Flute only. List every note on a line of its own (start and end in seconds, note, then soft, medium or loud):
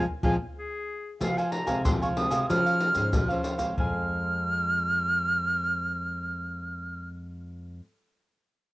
0.23 0.35 G#5 medium
1.21 1.39 F5 medium
1.38 1.53 G#5 medium
1.51 1.84 A#5 medium
1.85 1.91 C6 medium
2.02 2.08 C#6 medium
2.17 2.47 D#6 medium
2.50 3.41 F6 loud
3.78 7.10 F6 medium